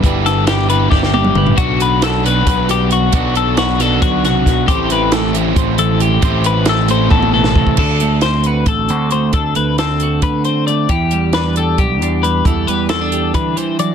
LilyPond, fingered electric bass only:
\new Staff \with { instrumentName = "Fingered electric bass" } { \clef bass \time 7/8 \key d \mixolydian \tempo 4 = 135 g,,2 g,,4 g,,8 | b,,2 b,,4. | b,,2 b,,4 b,,8 | a,,2 a,,4. |
a,,2 a,,4 a,,8 | d,2 a,,8 d,4 | d,8 d,4. d4. | e,2 b,,8 e,4 |
e,8 e,4. e4. | }